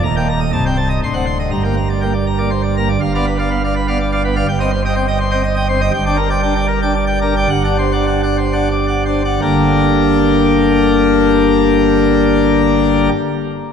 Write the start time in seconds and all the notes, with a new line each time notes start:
0.03 D#1 D#2 A#5
0.16 A#3 G5
0.29 A#5
0.40 D#5
0.53 C1 C2 A5
0.66 C4 G5
0.77 A5
0.89 D#5
1.04 D1 D2 C6
1.14 C4 F#5
1.26 C6
1.40 D#5
1.51 G1 G2 A#5
1.63 A#3 G5
1.77 A#5
1.90 D5
2.01 A#3 G5
2.13 D5
2.27 A#5
2.38 A#3 D5
2.50 C5
2.63 D5
2.77 A#3 A#5
2.89 D5
3.00 G1 G2 F5
3.14 B3 D5 F5
3.26 B4
3.39 D5 F5
3.50 B3 F5
3.64 D5 F5
3.76 B4
3.88 B3 D5 F5
4.00 D5
4.12 D5 F5
4.25 B3 B4
4.36 D5 F5
4.48 G1 G2 G5
4.60 C4 D#5 G5
4.71 C5
4.85 D#5 G5
4.95 C4 G5
5.08 D#5 G5
5.20 C5
5.31 C4 D#5 G5
5.43 D#5
5.56 D#5 G5
5.69 C4 C5
5.81 D#5 G5
5.94 G1 G2 G5
6.06 D4 D5 G5
6.17 A#4
6.30 D5 G5
6.42 D4 G5
6.55 D5 G5
6.68 A#4
6.82 D4 D5 G5
6.94 D5
7.06 D5 G5
7.21 D4 A#4
7.36 D5 G5
7.49 G1 G2 F#5
7.64 D4 D5 F#5
7.78 C5
7.92 D5 F#5
8.07 D4 F#5
8.23 D5 F#5
8.37 C5
8.53 D4 D5 F#5
8.71 D5
8.88 D5 F#5
9.05 D4 C5
9.24 D5 F#5
9.41 G1 G2 D3 A#3 D4 G4 A#4